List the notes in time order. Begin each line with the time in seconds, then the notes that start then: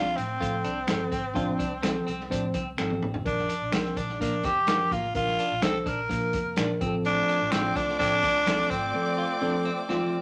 Already playing: C2 F3 C4 D4 F4
0.06 snare
0.16 A2 C4, closed hi-hat
0.40 A2 F3 C4 F4 A4, kick, closed hi-hat
0.64 C2 D4, closed hi-hat
0.87 G1 F3 C4 A4, finger snap, snare, closed hi-hat
1.12 G#1 C4, kick, closed hi-hat
1.34 A1 F3 C4 D4 F4, kick, closed hi-hat
1.59 C2 D4, kick, closed hi-hat
1.82 F3 C4 A4, finger snap, snare, closed hi-hat
2.07 C2 C4, closed hi-hat
2.20 snare
2.30 A2 F3 C4 D4 C5, kick, closed hi-hat
2.54 C2 C4, kick, closed hi-hat
2.78 G#1 F3 C4 A4, finger snap, snare
2.90 high tom
3.02 A1, mid tom
3.14 floor tom
3.25 A#1 F3 D4 A#4, kick, closed hi-hat
3.38 snare
3.49 D4, closed hi-hat
3.62 A#1
3.71 C2 F3 C4 D4 A#4, finger snap, snare, closed hi-hat
3.85 snare
3.97 A#1 D4, kick, closed hi-hat
4.09 snare
4.20 A#2 F3 A#3 D4 A#4, kick, closed hi-hat
4.43 F2 C4 G4, kick, closed hi-hat
4.67 F3 D4 A#4, finger snap, snare, closed hi-hat
4.91 A1 A#3 F4, kick, closed hi-hat
5.15 A#1 F3 D4 F4 A#4, kick, closed hi-hat
5.28 snare
5.39 D4, closed hi-hat
5.51 A#1
5.61 C2 F3 C4 D4 A4 C5, finger snap, snare, closed hi-hat
5.80 A4
5.86 A#1 D4 A#4, kick, closed hi-hat
6.09 A#2 F3 A#3 D4 A#4, kick, closed hi-hat
6.33 F2, kick, closed hi-hat
6.56 A#2 F3 D4 A#4, finger snap, snare, closed hi-hat
6.80 A1 F3 C4 G#4, kick, closed hi-hat
6.87 A4
7.05 A3 C4 D4 F4 D5 D6, closed hi-hat
7.29 D4, closed hi-hat
7.41 A1
7.51 A1 F3 C4 D4, finger snap, snare, closed hi-hat
7.76 C2 D4, kick, closed hi-hat
7.88 snare
7.99 A2 F3 C4 D4 A4, kick, closed hi-hat
8.23 C2 D4, kick, closed hi-hat
8.46 F3 C4 A4, finger snap, snare, closed hi-hat
8.70 G#1 C4, kick, closed hi-hat
8.94 F3 C4 A4
9.18 F4
9.41 F3 C4 D4 A4
9.65 C4
9.89 F3 C4 F4, snare